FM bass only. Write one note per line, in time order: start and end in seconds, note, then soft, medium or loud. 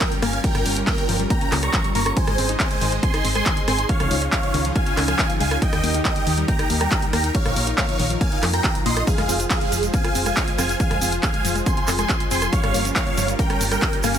0.22 0.40 G1 medium
0.55 0.63 G1 loud
0.66 0.83 G1 medium
1.09 1.26 G1 loud
1.52 1.69 C#2 loud
1.95 2.12 G1 loud
2.27 2.36 G#1 loud
2.38 2.55 G#1 medium
2.81 2.99 G#1 loud
3.25 3.42 G#1 medium
3.68 3.85 G#1 medium
4.00 4.09 C#2 loud
4.11 4.28 C#2 medium
4.54 4.71 C#2 loud
4.97 5.14 C#2 medium
5.40 5.58 C#2 medium
5.73 5.81 D#2 loud
5.84 6.01 D#2 medium
6.27 6.44 D#2 medium
6.70 6.87 D#2 medium
7.13 7.30 D#2 loud
7.46 7.54 A#1 loud
7.56 7.73 A#1 medium
7.99 8.17 A#1 medium
8.43 8.60 F2 loud
8.86 9.03 A#1 loud
9.18 9.27 F1 loud
9.29 9.46 F1 medium
9.72 9.89 F1 loud
10.15 10.32 F1 medium
10.58 10.76 F1 medium
10.91 10.99 F1 loud
11.02 11.19 F1 medium
11.45 11.62 F1 medium
11.88 12.05 F1 medium
12.31 12.48 F1 medium
12.64 12.72 G1 loud
12.74 12.91 G1 medium
13.17 13.35 G1 loud
13.61 13.78 G1 medium
14.04 14.19 G1 medium